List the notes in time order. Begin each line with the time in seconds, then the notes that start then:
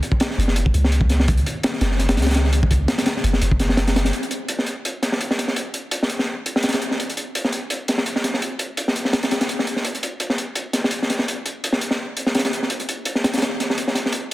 0.03 closed hi-hat
0.12 kick
0.20 snare, closed hi-hat
0.30 snare
0.38 F#1, closed hi-hat
0.48 snare
0.56 closed hi-hat
0.66 kick
0.74 C#2, closed hi-hat
0.84 snare
0.92 closed hi-hat
1.01 kick
1.09 snare, closed hi-hat
1.20 snare
1.28 kick, closed hi-hat
1.37 closed hi-hat
1.46 closed hi-hat
1.63 snare, closed hi-hat
1.73 snare
1.81 F#1, snare, closed hi-hat
1.91 snare
1.99 snare, closed hi-hat
2.09 snare, closed hi-hat
2.17 C#2, snare, closed hi-hat
2.22 snare, closed hi-hat
2.26 snare, closed hi-hat
2.31 snare, closed hi-hat
2.34 snare, closed hi-hat
2.45 snare
2.53 closed hi-hat
2.63 kick
2.71 kick, closed hi-hat
2.88 snare, closed hi-hat
2.98 snare, closed hi-hat
3.06 snare, closed hi-hat
3.17 snare
3.24 F#1, closed hi-hat
3.33 snare
3.41 F#1, closed hi-hat
3.51 kick
3.60 snare, closed hi-hat
3.69 snare
3.77 snare, closed hi-hat
3.88 snare, closed hi-hat
3.96 snare, closed hi-hat
4.05 snare, closed hi-hat
4.13 closed hi-hat
4.23 closed hi-hat
4.31 closed hi-hat
4.48 closed hi-hat
4.59 snare
4.66 closed hi-hat
4.85 closed hi-hat
5.02 snare, closed hi-hat
5.12 snare
5.21 closed hi-hat
5.31 snare
5.38 snare, closed hi-hat
5.48 snare
5.56 closed hi-hat
5.74 closed hi-hat
5.91 closed hi-hat
6.03 snare
6.10 closed hi-hat
6.19 snare
6.46 closed hi-hat
6.56 snare
6.63 snare, closed hi-hat
6.68 snare, closed hi-hat
6.73 snare, closed hi-hat
6.82 closed hi-hat
6.91 snare
7.00 closed hi-hat
7.10 closed hi-hat
7.17 closed hi-hat
7.35 closed hi-hat
7.44 snare
7.52 closed hi-hat
7.70 closed hi-hat
7.88 snare, closed hi-hat
7.98 snare
8.06 closed hi-hat
8.16 snare
8.24 snare, closed hi-hat
8.34 snare
8.42 closed hi-hat
8.59 closed hi-hat
8.77 closed hi-hat
8.88 snare
8.96 closed hi-hat
9.05 snare
9.13 snare, closed hi-hat
9.23 snare, closed hi-hat
9.31 snare, closed hi-hat
9.41 snare, closed hi-hat
9.49 closed hi-hat
9.59 snare
9.67 closed hi-hat
9.76 snare
9.85 closed hi-hat
9.95 closed hi-hat
10.03 closed hi-hat
10.20 closed hi-hat
10.30 snare
10.38 closed hi-hat
10.55 closed hi-hat
10.73 snare, closed hi-hat
10.84 snare
10.91 closed hi-hat
11.02 snare
11.10 snare, closed hi-hat
11.19 snare
11.28 closed hi-hat
11.46 closed hi-hat
11.64 closed hi-hat
11.72 snare
11.81 closed hi-hat
11.91 snare
12.17 closed hi-hat
12.26 snare
12.35 snare, closed hi-hat
12.39 snare, closed hi-hat
12.45 snare, closed hi-hat
12.53 closed hi-hat
12.63 snare
12.70 closed hi-hat
12.80 closed hi-hat
12.89 closed hi-hat
13.05 closed hi-hat
13.15 snare
13.24 snare, closed hi-hat
13.33 snare, closed hi-hat
13.38 snare, closed hi-hat
13.42 snare, closed hi-hat
13.60 snare, closed hi-hat
13.70 snare
13.78 closed hi-hat
13.88 snare
13.95 snare, closed hi-hat
14.06 snare
14.12 closed hi-hat